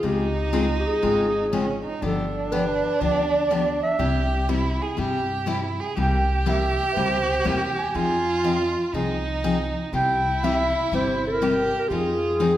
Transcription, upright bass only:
0.04 0.83 C#2 medium
1.03 1.82 G#1 medium
2.02 2.81 G1 medium
3.01 3.80 D2 medium
3.99 4.78 C2 medium
4.98 5.77 G2 medium
5.97 6.76 C2 medium
6.96 7.38 C#2 medium
7.46 7.88 E2 medium
7.95 8.74 F2 medium
8.93 9.73 C2 medium
9.93 10.72 C2 medium
10.92 11.71 G1 medium
11.90 12.57 F2 medium

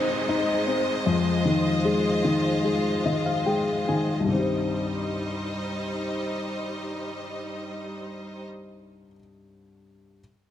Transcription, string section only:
0.00 4.27 G#3 medium
0.00 1.04 D#4 medium
0.00 4.27 C5 medium
0.00 4.27 D#5 medium
1.07 4.27 F4 medium
4.30 8.45 G3 soft
4.30 8.45 D#4 soft
4.30 8.45 C5 soft
4.30 8.45 D#5 soft

